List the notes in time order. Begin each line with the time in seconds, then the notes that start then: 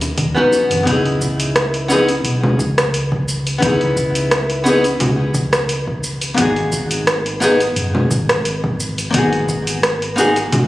0.01 open hi-hat, high bongo, shaker
0.18 D#2, kick, open hi-hat, shaker
0.35 B3 C#4 D#4 F#4 B4, high conga
0.52 high bongo, shaker
0.70 F#1, open hi-hat, low conga, shaker
0.83 C#2 B3 C#4, kick, open hi-hat
0.87 D#4 E4 G#4, shaker
1.05 open hi-hat
1.21 kick, shaker
1.40 open hi-hat, shaker
1.56 cross-stick, open hi-hat, shaker
1.74 open hi-hat
1.88 B3 C#4 D#4 E4 G#4, shaker
2.09 open hi-hat, shaker
2.23 B1, open hi-hat, shaker
2.44 low conga
2.59 C#2, kick, shaker
2.78 cross-stick, open hi-hat, shaker
2.94 open hi-hat, shaker
3.12 kick
3.28 shaker
3.47 open hi-hat, shaker
3.58 B3 C#4 D#4, kick
3.62 C#2 E4 G#4, open hi-hat, shaker
3.81 open hi-hat
3.97 kick, shaker
4.15 open hi-hat, shaker
4.31 cross-stick, open hi-hat, shaker
4.50 open hi-hat
4.64 B3 C#4 D#4 E4 G#4, shaker
4.84 open hi-hat, shaker
5.00 C#2, open hi-hat, low conga, shaker
5.34 kick, shaker
5.53 cross-stick, open hi-hat, shaker
5.69 open hi-hat, shaker
5.88 kick
6.04 shaker
6.21 open hi-hat, shaker
6.34 G#1 A#3 B3 D#4, kick, open hi-hat, shaker
6.40 F#4 G#4
6.56 open hi-hat
6.72 kick, shaker
6.91 open hi-hat, shaker
7.07 cross-stick, open hi-hat, shaker
7.26 open hi-hat
7.40 A#3 B3 D#4 G#4, shaker
7.60 open hi-hat, shaker
7.76 F#1, open hi-hat, shaker
7.95 low conga
8.11 G#1, kick, shaker
8.29 cross-stick, open hi-hat, shaker
8.45 open hi-hat, shaker
8.64 kick
8.80 shaker
8.98 open hi-hat, shaker
9.11 G#1 A#3 B3 D#4, kick, open hi-hat, shaker
9.16 F#4 G#4
9.33 open hi-hat
9.49 kick, shaker
9.67 open hi-hat, shaker
9.83 cross-stick, open hi-hat, shaker
10.02 open hi-hat
10.16 A#3 B3 D#4 F#4, shaker
10.20 G#4
10.36 open hi-hat, shaker
10.52 G#1, open hi-hat, low conga, shaker